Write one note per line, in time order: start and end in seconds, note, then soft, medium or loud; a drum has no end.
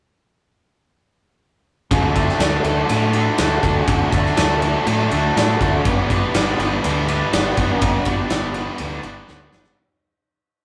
1.91 2.29 D2 medium
1.91 2.42 D3 medium
1.91 2.18 F#3 medium
1.91 2.17 A3 medium
1.91 2.19 D4 medium
1.91 2.18 F#4 medium
1.91 2.16 A4 medium
1.91 kick medium
1.91 ride medium
2.16 2.40 F#3 medium
2.16 2.41 A3 medium
2.16 2.42 D4 medium
2.16 2.42 F#4 medium
2.16 2.43 A4 medium
2.16 kick medium
2.16 ride medium
2.29 snare soft
2.39 2.58 D2 medium
2.39 2.90 D3 medium
2.39 3.14 F#3 medium
2.39 3.15 A3 medium
2.39 2.67 D4 medium
2.39 2.66 F#4 medium
2.39 snare loud
2.39 ride medium
2.44 2.65 A4 medium
2.63 2.83 D2 medium
2.63 2.91 F#4 medium
2.63 2.92 A4 medium
2.63 ride medium
2.67 2.91 D4 medium
2.89 3.27 A2 medium
2.89 3.38 D3 medium
2.89 3.16 D4 medium
2.89 3.15 F#4 medium
2.89 3.14 A4 medium
2.89 ride medium
3.13 3.38 F#3 medium
3.13 3.39 A3 medium
3.13 3.40 D4 medium
3.13 3.39 F#4 medium
3.13 3.41 A4 medium
3.13 ride medium
3.38 3.58 D2 medium
3.38 3.86 D3 medium
3.38 3.64 F#3 medium
3.38 3.64 A3 medium
3.38 3.64 D4 medium
3.38 3.62 F#4 medium
3.38 3.62 A4 medium
3.38 snare loud
3.38 ride medium
3.62 3.82 D2 medium
3.62 3.87 F#3 medium
3.62 3.88 A3 medium
3.62 3.88 D4 medium
3.62 3.88 F#4 medium
3.62 3.89 A4 medium
3.62 kick medium
3.62 ride medium
3.87 4.06 D2 medium
3.87 4.34 D3 medium
3.87 4.13 F#3 medium
3.87 4.13 A3 medium
3.87 4.13 D4 medium
3.87 4.11 F#4 medium
3.87 4.11 A4 medium
3.87 kick loud
3.87 ride medium
4.11 4.31 D2 medium
4.11 4.36 F#3 medium
4.11 4.37 A3 medium
4.11 4.36 D4 medium
4.11 4.36 F#4 medium
4.11 4.37 A4 medium
4.11 kick medium
4.11 ride medium
4.26 snare soft
4.36 4.75 D2 medium
4.36 4.85 D3 medium
4.36 5.12 F#3 medium
4.36 5.11 A3 medium
4.36 4.64 D4 medium
4.36 4.62 F#4 medium
4.36 4.62 A4 medium
4.36 snare loud
4.36 ride medium
4.62 4.87 D4 medium
4.62 4.87 F#4 medium
4.62 4.87 A4 medium
4.62 ride medium
4.86 5.05 A2 medium
4.86 5.35 D3 medium
4.86 5.12 D4 medium
4.86 5.11 F#4 medium
4.86 5.10 A4 medium
4.86 ride medium
5.11 5.30 D2 medium
5.11 5.35 F#3 soft
5.11 5.37 A3 medium
5.11 5.37 D4 medium
5.11 5.36 F#4 medium
5.11 5.37 A4 medium
5.11 ride medium
5.36 5.55 A2 medium
5.36 5.84 D3 medium
5.36 5.61 F#3 medium
5.36 5.60 A3 medium
5.36 5.63 D4 medium
5.36 5.62 F#4 medium
5.36 5.61 A4 medium
5.36 snare loud
5.36 ride medium
5.60 5.79 D2 medium
5.60 5.84 F#3 medium
5.60 5.85 A3 medium
5.60 5.85 D4 medium
5.60 5.85 F#4 medium
5.60 5.87 A4 medium
5.60 kick medium
5.60 ride medium
5.64 5.86 D4 medium
5.84 6.23 G1 medium
5.84 7.82 G2 medium
5.84 6.32 D3 medium
5.84 6.35 G3 medium
5.84 6.11 B3 medium
5.84 6.12 D4 medium
5.84 6.10 B4 medium
5.84 kick loud
5.84 ride medium
6.10 6.34 G3 medium
6.10 6.36 B3 medium
6.10 6.35 D4 medium
6.10 6.36 B4 medium
6.10 kick medium
6.10 ride medium
6.34 6.53 G1 medium
6.34 7.31 D3 medium
6.34 6.84 G3 medium
6.34 6.59 B3 medium
6.34 6.61 D4 medium
6.34 6.58 B4 medium
6.34 snare loud
6.34 ride medium
6.59 6.78 G1 medium
6.59 6.85 B3 medium
6.59 6.84 D4 medium
6.59 6.85 B4 medium
6.59 ride medium
6.84 7.22 D2 medium
6.84 7.32 G3 medium
6.84 7.10 B3 medium
6.84 7.11 D4 medium
6.84 7.09 B4 loud
6.84 ride medium
7.08 7.32 G3 medium
7.08 7.33 B3 medium
7.08 7.32 D4 medium
7.08 7.34 B4 medium
7.08 ride medium
7.32 7.52 G1 medium
7.32 7.82 D3 medium
7.32 7.81 G3 medium
7.32 7.58 B3 medium
7.32 7.58 D4 medium
7.32 7.57 B4 medium
7.32 snare loud
7.32 ride medium
7.57 7.76 G1 medium
7.57 7.83 G3 medium
7.57 7.81 B3 medium
7.57 7.80 D4 medium
7.57 7.82 B4 medium
7.57 kick medium
7.57 ride medium
7.81 8.01 G1 medium
7.81 8.32 G2 medium
7.81 8.30 D3 medium
7.81 8.30 G3 medium
7.81 8.07 B3 medium
7.81 8.08 D4 medium
7.81 8.06 B4 medium
7.81 kick loud
7.81 ride medium
8.05 8.25 G1 medium
8.05 8.31 B3 medium
8.05 8.32 B4 medium
8.05 kick medium
8.05 ride medium
8.09 8.30 G3 medium
8.09 8.31 D4 medium
8.30 8.68 G1 medium
8.30 9.28 D3 medium
8.30 8.79 G3 medium
8.30 8.56 B3 medium
8.30 8.57 D4 medium
8.30 8.55 B4 medium
8.30 snare loud
8.30 ride medium
8.54 8.81 B3 medium
8.54 8.80 D4 medium
8.54 8.81 B4 medium
8.54 ride medium
8.78 8.99 D2 medium
8.78 9.26 G3 medium
8.78 9.03 B3 medium
8.78 9.04 D4 medium
8.78 ride medium
8.83 9.02 B4 medium
9.03 9.23 G1 medium
9.03 9.28 B3 medium
9.03 9.27 D4 medium
9.03 9.28 B4 medium
9.03 ride medium
9.08 9.28 G3 medium
9.27 9.48 D2 medium
9.27 9.77 D3 medium
9.27 9.76 G3 medium
9.27 9.52 B3 medium
9.27 9.53 D4 medium
9.27 9.51 B4 medium
9.27 snare medium
9.52 9.72 G1 medium
9.52 9.78 G3 medium
9.52 9.77 B3 medium
9.52 9.77 D4 medium
9.52 9.76 B4 medium
9.52 snare medium
9.64 snare medium